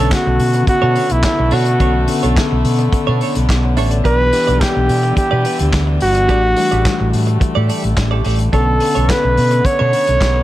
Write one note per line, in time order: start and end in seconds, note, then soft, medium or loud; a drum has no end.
0.00 4.06 C#3 medium
0.00 1.79 D3 medium
0.00 8.49 D3 medium
0.00 4.01 A3 medium
0.00 1.80 B3 medium
0.00 4.01 B3 medium
0.00 1.80 C#4 medium
0.00 0.11 D4 medium
0.00 0.11 A4 medium
0.00 0.15 A4 loud
0.00 1.81 A4 medium
0.00 0.12 C#5 medium
0.11 0.68 F#4 medium
0.11 muted clean electric guitar stroke soft
0.11 kick loud
0.11 snare loud
0.11 clap loud
0.11 closed hi-hat medium
0.26 0.37 B1 medium
0.26 muted clean electric guitar stroke soft
0.40 0.62 B2 medium
0.40 open hi-hat medium
0.53 muted clean electric guitar stroke soft
0.53 closed hi-hat soft
0.67 1.14 F#4 loud
0.67 muted clean electric guitar stroke soft
0.67 muted fingered electric bass stroke soft
0.67 kick loud
0.67 closed hi-hat medium
0.82 0.94 B2 loud
0.82 0.94 D4 medium
0.82 0.95 A4 medium
0.82 0.96 C#5 medium
0.95 1.11 D4 medium
0.95 1.11 A4 medium
0.95 1.09 C#5 medium
0.95 open hi-hat medium
1.10 1.22 B1 medium
1.10 1.55 E4 medium
1.10 muted clean electric guitar stroke soft
1.10 closed hi-hat medium
1.23 muted clean electric guitar stroke soft
1.23 kick medium
1.23 snare loud
1.23 clap medium
1.23 closed hi-hat medium
1.39 1.50 B1 medium
1.39 muted clean electric guitar stroke soft
1.51 1.75 B2 medium
1.51 1.71 D4 medium
1.51 2.37 F#4 loud
1.51 1.67 A4 medium
1.51 1.66 C#5 medium
1.51 open hi-hat medium
1.65 muted clean electric guitar stroke soft
1.65 closed hi-hat soft
1.79 2.03 B1 loud
1.79 2.02 D3 medium
1.79 2.02 B3 medium
1.79 2.03 C#4 medium
1.79 1.99 D4 medium
1.79 1.95 A4 medium
1.79 2.03 A4 medium
1.79 1.94 C#5 medium
1.79 kick medium
1.79 closed hi-hat soft
1.95 muted clean electric guitar stroke soft
2.07 2.97 D3 medium
2.07 2.97 B3 medium
2.07 2.98 C#4 medium
2.07 2.98 A4 medium
2.07 muted clean electric guitar stroke soft
2.07 open hi-hat medium
2.23 2.34 B1 medium
2.23 2.35 D4 soft
2.23 2.36 A4 medium
2.23 2.36 C#5 medium
2.23 closed hi-hat soft
2.36 muted clean electric guitar stroke soft
2.36 kick loud
2.36 snare loud
2.36 clap medium
2.36 closed hi-hat medium
2.51 2.63 B1 medium
2.51 muted clean electric guitar stroke soft
2.65 2.88 B2 medium
2.65 open hi-hat medium
2.79 muted clean electric guitar stroke soft
2.79 closed hi-hat soft
2.93 muted clean electric guitar stroke soft
2.93 muted fingered electric bass stroke soft
2.93 kick loud
2.93 closed hi-hat medium
3.07 3.19 B2 loud
3.07 3.20 D4 medium
3.07 3.21 A4 medium
3.07 3.22 C#5 medium
3.21 3.36 D4 medium
3.21 3.36 A4 medium
3.21 3.34 C#5 medium
3.21 open hi-hat medium
3.35 3.47 B1 medium
3.35 muted clean electric guitar stroke soft
3.35 closed hi-hat medium
3.49 3.78 B1 medium
3.49 muted clean electric guitar stroke soft
3.49 kick loud
3.49 snare medium
3.49 clap medium
3.49 closed hi-hat medium
3.63 3.76 C#5 soft
3.63 3.76 F#5 medium
3.63 muted clean electric guitar stroke soft
3.77 4.00 A1 medium
3.77 3.96 D4 medium
3.77 3.92 A4 medium
3.77 3.91 B4 medium
3.77 3.90 C#5 medium
3.77 3.91 E5 medium
3.77 open hi-hat medium
3.91 4.18 A4 medium
3.91 4.18 D5 medium
3.91 muted clean electric guitar stroke soft
3.91 closed hi-hat soft
4.04 4.28 B1 loud
4.04 4.27 E3 medium
4.04 6.27 E3 medium
4.04 8.49 G3 medium
4.04 4.27 B3 medium
4.04 4.27 D4 medium
4.04 4.24 G4 medium
4.04 4.28 G4 medium
4.04 4.19 B4 medium
4.04 4.62 B4 loud
4.04 4.18 D5 medium
4.04 kick medium
4.04 closed hi-hat soft
4.19 muted clean electric guitar stroke soft
4.32 5.22 E3 medium
4.32 5.22 B3 medium
4.32 5.22 D4 medium
4.32 5.22 G4 medium
4.32 muted clean electric guitar stroke soft
4.32 open hi-hat medium
4.47 4.59 B1 medium
4.47 4.59 G4 medium
4.47 4.60 B4 medium
4.47 4.61 D5 medium
4.47 closed hi-hat soft
4.61 5.17 G4 medium
4.61 kick loud
4.61 snare loud
4.61 clap medium
4.61 closed hi-hat medium
4.75 4.87 B1 medium
4.75 muted clean electric guitar stroke soft
4.89 5.12 B2 medium
4.89 open hi-hat medium
5.03 muted clean electric guitar stroke soft
5.03 closed hi-hat soft
5.16 5.69 G4 loud
5.16 muted clean electric guitar stroke soft
5.16 muted fingered electric bass stroke soft
5.16 kick loud
5.16 closed hi-hat medium
5.31 5.43 B2 loud
5.31 5.43 G4 medium
5.31 5.44 B4 medium
5.31 5.45 D5 medium
5.44 5.60 G4 medium
5.44 5.59 B4 medium
5.44 5.58 D5 medium
5.44 open hi-hat medium
5.59 5.71 D2 medium
5.59 muted clean electric guitar stroke soft
5.59 closed hi-hat soft
5.72 5.96 D2 medium
5.72 muted clean electric guitar stroke soft
5.72 kick medium
5.72 snare loud
5.72 clap medium
5.72 closed hi-hat medium
5.87 muted clean electric guitar stroke soft
6.01 6.29 G1 medium
6.01 7.66 F#4 loud
6.01 open hi-hat medium
6.15 muted clean electric guitar stroke soft
6.15 closed hi-hat soft
6.29 6.52 A1 loud
6.29 6.51 E3 medium
6.29 8.51 A3 medium
6.29 6.52 A3 medium
6.29 6.52 D4 medium
6.29 6.48 G4 medium
6.29 6.52 G4 medium
6.29 6.44 A4 medium
6.29 6.42 D5 medium
6.29 kick medium
6.29 closed hi-hat soft
6.43 muted clean electric guitar stroke soft
6.57 7.46 E3 medium
6.57 7.47 G3 medium
6.57 7.46 A3 medium
6.57 7.47 D4 medium
6.57 muted clean electric guitar stroke soft
6.57 open hi-hat medium
6.71 6.83 A1 loud
6.71 6.83 G4 soft
6.71 6.84 A4 soft
6.71 6.85 D5 medium
6.71 closed hi-hat soft
6.84 muted clean electric guitar stroke soft
6.84 kick loud
6.84 snare loud
6.84 clap medium
6.84 closed hi-hat medium
7.00 7.11 A1 medium
7.00 muted clean electric guitar stroke soft
7.13 7.37 A2 medium
7.13 open hi-hat medium
7.27 muted clean electric guitar stroke soft
7.27 closed hi-hat soft
7.40 muted clean electric guitar stroke soft
7.40 muted fingered electric bass stroke soft
7.40 kick loud
7.40 closed hi-hat medium
7.55 7.67 A2 medium
7.55 7.67 G4 medium
7.55 7.68 A4 medium
7.55 7.69 D5 medium
7.68 7.84 G4 medium
7.68 7.83 A4 medium
7.68 7.82 D5 medium
7.68 open hi-hat medium
7.83 7.95 A1 medium
7.83 muted clean electric guitar stroke soft
7.83 closed hi-hat soft
7.96 8.20 A1 medium
7.96 muted clean electric guitar stroke soft
7.96 kick medium
7.96 snare loud
7.96 clap medium
7.96 closed hi-hat medium
8.11 8.23 G4 medium
8.11 8.25 A4 medium
8.11 8.25 D5 medium
8.24 8.48 A1 medium
8.24 8.40 G4 medium
8.24 8.40 A4 medium
8.24 8.38 D5 medium
8.24 open hi-hat medium
8.39 muted clean electric guitar stroke soft
8.39 closed hi-hat soft
8.53 8.76 B1 medium
8.53 8.75 D3 medium
8.53 10.43 D3 medium
8.53 10.43 A3 medium
8.53 10.43 B3 medium
8.53 8.76 B3 medium
8.53 8.76 C#4 medium
8.53 8.72 D4 medium
8.53 8.67 A4 medium
8.53 8.76 A4 medium
8.53 9.11 A4 loud
8.53 8.66 C#5 medium
8.53 kick medium
8.53 closed hi-hat soft
8.67 muted clean electric guitar stroke soft
8.80 9.70 D3 medium
8.80 9.70 B3 medium
8.80 9.70 C#4 medium
8.80 9.70 A4 medium
8.80 muted clean electric guitar stroke soft
8.80 open hi-hat medium
8.95 9.07 B1 medium
8.95 9.07 D4 soft
8.95 9.08 A4 soft
8.95 9.09 C#5 medium
8.95 closed hi-hat soft
9.09 9.67 B4 loud
9.09 muted clean electric guitar stroke soft
9.09 kick loud
9.09 snare loud
9.09 clap medium
9.09 closed hi-hat medium
9.24 9.35 B1 medium
9.24 muted clean electric guitar stroke soft
9.37 9.60 B2 medium
9.37 open hi-hat medium
9.51 muted clean electric guitar stroke soft
9.51 closed hi-hat soft
9.65 10.43 C#5 loud
9.65 muted clean electric guitar stroke soft
9.65 muted fingered electric bass stroke soft
9.65 kick loud
9.65 closed hi-hat medium
9.79 9.91 B2 loud
9.79 9.92 D4 medium
9.79 9.93 A4 medium
9.79 9.93 C#5 medium
9.93 10.08 D4 medium
9.93 10.08 A4 medium
9.93 10.07 C#5 medium
9.93 open hi-hat medium
10.07 10.19 B1 medium
10.07 muted clean electric guitar stroke soft
10.07 closed hi-hat soft
10.21 10.43 B1 medium
10.21 muted clean electric guitar stroke soft
10.21 kick medium
10.21 snare loud
10.21 clap medium
10.21 closed hi-hat medium
10.36 muted clean electric guitar stroke soft